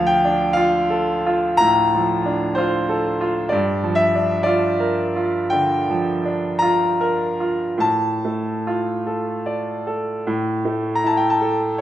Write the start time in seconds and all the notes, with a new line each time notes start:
Already playing: D2 F3 F5
0.07 G5
0.25 D4
0.53 F4 F5
0.90 A4
1.26 F4
1.57 A2 A#5
1.95 F3
2.26 D4
2.55 F4 C5
2.89 A4
3.21 F4
3.49 G2 D5
3.84 F3
3.95 E5
4.15 D4
4.43 F4 D5
4.80 A#4
5.16 F4
5.50 D3 G5
5.90 F3
6.25 D4
6.59 F4 A#5
7.01 A#4
7.40 F4
7.78 A2 A5
8.25 A3
8.67 F4
9.07 A4
9.46 D5
9.87 A4
10.27 A2
10.65 A3
10.95 A#5
11.04 E4 A5
11.17 G5
11.30 A5
11.41 A4